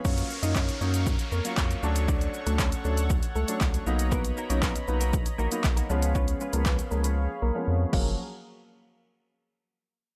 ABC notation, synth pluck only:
X:1
M:4/4
L:1/16
Q:1/4=118
K:F#
V:1 name="Synth pluck"
[Cc] z2 [Dd] [Cc]2 [Cc] z3 [A,A]2 z4 | [=D=d] z2 [=A,=A] [Cc]2 [A,A] z3 [A,A]2 z4 | [B,B] z2 [Cc] [B,B]2 [B,B] z3 [A,A]2 z4 | [Cc] z2 [A,A] [B,B]2 [A,A] z3 [A,A]2 z2 A,2 |
z16 |]